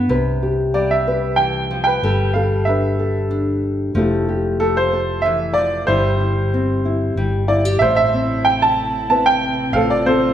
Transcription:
Already playing: nylon-string guitar D4
0.09 fretless electric bass C2, nylon-string guitar C3 B4
0.43 nylon-string guitar G4
0.74 nylon-string guitar G3, upright piano D5
0.91 upright piano E5
1.08 nylon-string guitar B4
1.36 nylon-string guitar E3, upright piano G5
1.71 nylon-string guitar F3
1.84 upright piano B4 G5
2.03 fretless electric bass G1, nylon-string guitar G3 A4
2.34 nylon-string guitar A4, upright piano F5
2.65 nylon-string guitar D4, upright piano E5
2.69 upright piano B4
2.99 nylon-string guitar A4
3.31 nylon-string guitar D4
3.95 fretless electric bass F1, nylon-string guitar F3 A3 E4 G4 A4
4.29 nylon-string guitar G4
4.60 nylon-string guitar A3, upright piano A4
4.77 upright piano C5
4.93 nylon-string guitar A4
5.22 nylon-string guitar E3, upright piano E5
5.54 upright piano D5
5.58 nylon-string guitar F3
5.87 fretless electric bass G1, nylon-string guitar G3 E4, upright piano E4 C5
6.20 nylon-string guitar E4
6.54 nylon-string guitar C4
6.85 nylon-string guitar E4
7.16 fretless electric bass G1, nylon-string guitar G3 G4
7.48 nylon-string guitar E4, upright piano D5
7.65 nylon-string guitar G4
7.79 fretless electric bass A1, nylon-string guitar A2, string section C3 A3 E4, upright piano C5 E5
7.96 upright piano E5
8.14 nylon-string guitar C4
8.45 upright piano G5
8.62 upright piano A5
9.10 nylon-string guitar C4 E4 B4, upright piano A5
9.26 upright piano G5
9.72 fretless electric bass A1, nylon-string guitar A2 C5, string section F3 F4, upright piano A4 F5
9.90 upright piano D5
10.06 nylon-string guitar C4, upright piano A4 C5

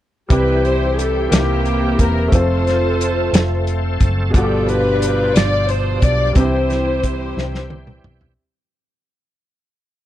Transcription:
0.29 fingered electric bass C2, grand piano C3 G3 C4 E4 G4, tonewheel organ E3 G3 C4, string section E4, alto saxophone B4, kick, closed hi-hat
0.33 tonewheel organ G4, string section G4 B4
0.65 alto saxophone C5, string section C5, closed hi-hat
0.93 alto saxophone G#4
0.99 alto saxophone A4, string section A4, closed hi-hat
1.29 fingered electric bass C2, grand piano C3 A#3 C4 D#4 G4, tonewheel organ E3 A#3 C4 G4, closed hi-hat
1.33 string section A#3 E4 G4, alto saxophone G4, snare
1.38 grand piano E4
1.65 closed hi-hat
1.99 fingered electric bass E1, string section A#4, alto saxophone A#4, kick, closed hi-hat
2.28 grand piano A3 C4
2.32 fingered electric bass F1, tonewheel organ F3 A3 C4 A4, grand piano F4 A4, string section F4 A4 C5, alto saxophone C5, kick, closed hi-hat
2.67 snare, closed hi-hat
3.01 closed hi-hat
3.33 fingered electric bass F1, snare, closed hi-hat
3.67 closed hi-hat
4.00 fingered electric bass F#1, kick, closed hi-hat
4.30 grand piano G2 B2 D4, tonewheel organ D4, alto saxophone G#4
4.34 fingered electric bass G1, tonewheel organ B2 F3 G4, string section D4 F4 A4, grand piano F4 F#4, alto saxophone A4, kick, closed hi-hat
4.44 grand piano G4
4.68 string section D4 F4 B4, alto saxophone B4, closed hi-hat
5.02 closed hi-hat
5.36 fingered electric bass G1, string section D5, alto saxophone D5, snare, closed hi-hat
5.69 string section C5, alto saxophone C5, closed hi-hat
6.02 fingered electric bass B1, string section D5, alto saxophone D5, kick, closed hi-hat
6.30 grand piano G3, alto saxophone D5
6.35 fingered electric bass C2, grand piano C3 C4 D4, tonewheel organ E3 G3 C4 G4, alto saxophone C5, string section C5, kick, closed hi-hat
6.40 string section E4 G4, grand piano G4
6.44 grand piano E4
6.70 snare, closed hi-hat
7.03 kick, closed hi-hat
7.37 fingered electric bass C2, snare
7.55 snare
7.70 high tom
7.87 mid tom
8.04 fingered electric bass B1, mid tom
8.21 floor tom

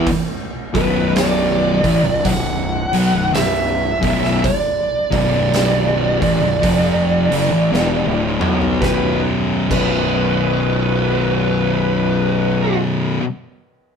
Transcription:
0.07 kick, open hi-hat
0.74 fingered electric bass B0, distorted electric guitar B1 F#2 B2, lead electric guitar B4, kick, open hi-hat
1.16 lead electric guitar D5, snare, open hi-hat
1.83 fingered electric bass A1, distorted electric guitar A2 E3, kick, open hi-hat
2.04 fingered electric bass B0, distorted electric guitar B1 F#2
2.24 fingered electric bass B0, distorted electric guitar B1 F#2, lead electric guitar F#5, kick, open hi-hat
2.93 fingered electric bass B1, distorted electric guitar B2 F#3, open hi-hat
3.13 fingered electric bass B0, distorted electric guitar B1 F#2
3.33 fingered electric bass B0, distorted electric guitar B1 F#2, lead electric guitar E5, snare, open hi-hat
4.01 fingered electric bass B0, distorted electric guitar B1 F#2 B2, kick, open hi-hat
4.24 snare
4.44 lead electric guitar D5, kick, open hi-hat
5.11 fingered electric bass B0, distorted electric guitar B1 F#2 B2, lead electric guitar D5, kick, open hi-hat
5.54 snare, open hi-hat
6.21 fingered electric bass A1, distorted electric guitar A2 E3, kick, open hi-hat
6.41 fingered electric bass B0, distorted electric guitar B1 F#2
6.61 fingered electric bass F1, distorted electric guitar F2 C3 F3, kick, open hi-hat
7.30 fingered electric bass F#1, distorted electric guitar F#2 C#3, open hi-hat
7.50 fingered electric bass A1, distorted electric guitar A2 E3
7.72 fingered electric bass E1, distorted electric guitar E2 B2, snare
8.06 fingered electric bass D1, distorted electric guitar D2 A2
8.40 fingered electric bass B1, distorted electric guitar B2 F#3 B3, mid tom
8.62 floor tom
8.80 fingered electric bass B0, distorted electric guitar B1 F#2, lead electric guitar B4, kick, snare
8.84 distorted electric guitar B2
9.69 fingered electric bass B0, distorted electric guitar B1 F#2 B2, lead electric guitar B4, kick, crash

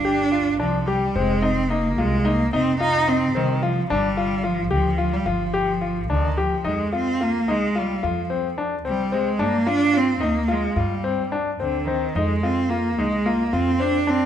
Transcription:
Already playing: upright bass G1, cello D4
0.05 grand piano G4
0.32 grand piano F4
0.60 upright bass C2, cello F3, grand piano D4
0.86 cello G3, grand piano G4
1.15 upright bass F1, cello G#3, grand piano C4
1.41 cello C4, grand piano D#4
1.70 cello A#3, grand piano D#4
1.98 upright bass C2, cello G#3, grand piano F4
2.25 cello A#3, grand piano D#4
2.53 upright bass F1, cello C4, grand piano D#4
2.80 cello D#4, grand piano F4
3.08 cello C4, grand piano D#4
3.35 upright bass C2, cello D#3, grand piano C4
3.62 cello F3, grand piano F4
3.90 upright bass G1, cello G3, grand piano D4
4.17 grand piano F4
4.44 cello F3, grand piano F4
4.71 upright bass D2, cello F3, grand piano G4
4.98 grand piano F4
5.13 cello G3
5.26 upright bass G1, cello F3, grand piano F4
5.54 grand piano G4
5.81 grand piano F4
6.09 upright bass D2, cello D#3, grand piano D4
6.37 cello F3, grand piano G4
6.64 upright bass F2, cello G#3, grand piano D#4
6.93 cello C4, grand piano F4
7.21 cello A#3, grand piano F4
7.48 upright bass C2, cello G#3, grand piano D#4
7.75 cello G3, grand piano F4
8.03 upright bass F2, cello F3, grand piano F4
8.30 grand piano C4
8.58 grand piano D4
8.85 upright bass C2, cello G3, grand piano C4
9.12 cello G#3, grand piano C4
9.39 upright bass G2, cello A#3, grand piano D4
9.66 cello D4, grand piano F4
9.93 cello C4, grand piano F4
10.20 upright bass D2, cello A#3, grand piano D#4
10.48 cello G#3, grand piano F4
10.76 upright bass G2, cello G3, grand piano F4
11.04 grand piano C4
11.32 grand piano D4
11.60 upright bass D2, cello D3, grand piano C4
11.85 cello D#3, grand piano C4
12.15 upright bass F2, cello G#3, grand piano D#4
12.43 cello C4, grand piano F4
12.69 cello A#3, grand piano F4
12.98 upright bass C2, cello G#3, grand piano D#4
13.26 cello A#3, grand piano F4
13.53 upright bass F2, cello C4, grand piano F4
13.80 grand piano C4, cello D4
14.07 cello C4, grand piano D4

